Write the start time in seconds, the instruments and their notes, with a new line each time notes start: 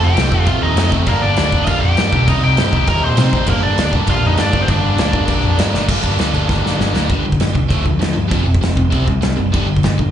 Already playing: overdriven electric guitar F2 C3 F3 A3 C4
0.02 picked electric bass F1, overdriven electric guitar G4 G5
0.14 picked electric bass C2, overdriven electric guitar F2 C3 F3 A3 C4, crash
0.18 snare
0.30 picked electric bass F1, overdriven electric guitar F2 C3 F3 A3 C4, kick
0.45 picked electric bass A1, overdriven electric guitar F2 C3 F3 A3 C4 F4 F5, kick, crash
0.60 picked electric bass D#2, overdriven electric guitar D#4 D#5
0.76 overdriven electric guitar F2 C3 F3 A3 C4, picked electric bass F2, snare, crash
0.90 picked electric bass F1, overdriven electric guitar F2 C3 F3 A3 C4, kick
1.06 picked electric bass G1, overdriven electric guitar G2 D3 G3 A#3 D4 A#4, kick, crash
1.22 picked electric bass G1, overdriven electric guitar D4 D5
1.36 picked electric bass D2, overdriven electric guitar G2 D3 G3 A#3 D4, snare, crash
1.52 picked electric bass G1, overdriven electric guitar G2 D3 G3 A#3 D4, kick
1.64 picked electric bass A#1, overdriven electric guitar G2 D3 F4 D#5 F5, kick, crash
1.69 overdriven electric guitar G3 A#3 D4
1.81 picked electric bass F2, overdriven electric guitar G4 G5
1.97 overdriven electric guitar G2 D3 G3 A#3 D4, picked electric bass G2, snare, crash
2.12 picked electric bass B1, overdriven electric guitar G2 D3 G3 A#3 D4, kick
2.28 picked electric bass C2, overdriven electric guitar C3 G3 C4 D#4 D#5, kick, crash
2.43 picked electric bass C2, overdriven electric guitar G4 G5
2.57 picked electric bass G2, overdriven electric guitar C3 G3 C4 D#4, snare, crash
2.72 picked electric bass C2, overdriven electric guitar C3 G3 C4 D#4, kick
2.86 picked electric bass D#2, overdriven electric guitar C3 G3 C4 D#4 A#4 A#5, kick, crash
3.03 picked electric bass A#2, overdriven electric guitar C5 C6
3.17 overdriven electric guitar C3 G3 C4 D#4, picked electric bass C3, snare, crash
3.33 picked electric bass A1, overdriven electric guitar C3 G3 C4 D#4, kick
3.47 picked electric bass G1, overdriven electric guitar G2 D3 G3 A#3 D4 A#4, kick, crash
3.62 picked electric bass G1, overdriven electric guitar D4 D5
3.77 picked electric bass D2, overdriven electric guitar G2 D3 G3 A#3, snare, crash
3.81 overdriven electric guitar D4
3.91 picked electric bass G1, overdriven electric guitar G2 D3 G3 A#3 D4, kick
4.07 picked electric bass A#1, overdriven electric guitar G2 D3 G3 A#3 D4 F4, kick, crash
4.11 overdriven electric guitar F5
4.22 picked electric bass F2, overdriven electric guitar D#4
4.26 overdriven electric guitar D#5
4.37 picked electric bass G2, overdriven electric guitar G2 D3 G3 A#3 D4 D5, snare, crash
4.52 picked electric bass G1, overdriven electric guitar G2 D3 G3 A#3 D4, kick
4.61 overdriven electric guitar C4 C5
4.67 picked electric bass G1, overdriven electric guitar G2 D3 G3 A#3 D4 D5, kick, crash
4.83 picked electric bass G1
4.97 picked electric bass D2, overdriven electric guitar G2 D3 G3 A#3 D4, snare, crash
5.12 picked electric bass G1, overdriven electric guitar G2 D3 G3 A#3 D4, kick
5.27 picked electric bass A#1, overdriven electric guitar G2 D3 G3 A#3 D4, kick, crash
5.44 picked electric bass F2
5.58 overdriven electric guitar G2 D3 G3 A#3 D4, picked electric bass G2, snare, crash
5.73 picked electric bass G1, overdriven electric guitar G2 D3 G3 A#3 D4, snare
5.88 picked electric bass G1, overdriven electric guitar G2 D3 G3 A#3 D4, kick, crash
6.03 picked electric bass G1, overdriven electric guitar G2 D3 G3 A#3 D4, kick, crash
6.19 picked electric bass D2, overdriven electric guitar G2 D3 G3 A#3 D4, snare, crash
6.34 picked electric bass G1, overdriven electric guitar G2 D3 G3 A#3 D4, crash
6.48 picked electric bass G1, overdriven electric guitar G2 D3 G3 A#3 D4, kick, snare
6.63 picked electric bass G1, overdriven electric guitar G2 D3 G3 A#3 D4, snare
6.77 picked electric bass G1, overdriven electric guitar G2 D3 G3 A#3 D4, snare
6.94 picked electric bass D2, overdriven electric guitar G2 D3 G3 A#3 D4, snare
7.10 picked electric bass G1, overdriven electric guitar G2 D3 G3, kick, crash
7.25 picked electric bass G1, overdriven electric guitar G2 D3
7.32 kick
7.40 picked electric bass G1, overdriven electric guitar G2 D3, snare, crash
7.54 picked electric bass C2, overdriven electric guitar G2 D3, kick
7.69 picked electric bass D2, overdriven electric guitar D3 F3 A3, kick, crash
7.85 picked electric bass D2, overdriven electric guitar D3 F3, kick
7.99 picked electric bass D2, overdriven electric guitar D3 F3, snare, crash
8.13 picked electric bass G2, overdriven electric guitar D3 F3
8.28 picked electric bass F1, overdriven electric guitar F2 C3 F3, kick, crash
8.46 picked electric bass F1, overdriven electric guitar F2 C3
8.55 kick
8.61 picked electric bass F1, overdriven electric guitar F2 C3, snare, crash
8.77 picked electric bass F1, overdriven electric guitar F2 C3, kick
8.90 picked electric bass C2, overdriven electric guitar C3 G3 C4, kick, crash
9.05 picked electric bass C2, overdriven electric guitar C3 G3, kick
9.22 picked electric bass C2, overdriven electric guitar C3 G3, snare, crash
9.37 picked electric bass F#1, overdriven electric guitar C3 G3
9.52 picked electric bass G1, overdriven electric guitar G2 D3 G3, kick, crash
9.67 picked electric bass G1, overdriven electric guitar G2 D3
9.77 kick
9.83 picked electric bass G1, overdriven electric guitar G2 D3, snare, crash
9.98 picked electric bass G1, overdriven electric guitar G2 D3, kick